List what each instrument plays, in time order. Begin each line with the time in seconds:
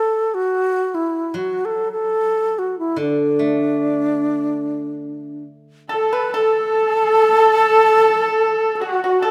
Already playing: xiao A4
0.34 xiao F#4
0.95 xiao E4
1.34 guzheng F#3, xiao F#4
1.65 xiao A4
1.92 xiao A4
2.59 xiao F#4
2.79 xiao E4
2.96 guzheng D3, xiao D4
3.39 guzheng A3
5.89 pipa A4, horsehead fiddle A4, erhu A4, xiao A4
6.13 pipa B4, xiao B4
6.32 horsehead fiddle A4, pipa A4, erhu A4, xiao A4
8.75 xiao A4
8.80 horsehead fiddle F#4, erhu F#4, pipa F#4, xiao F#4
9.02 erhu F#4, pipa F#4, xiao F#4
9.22 erhu A4, pipa A4, xiao A4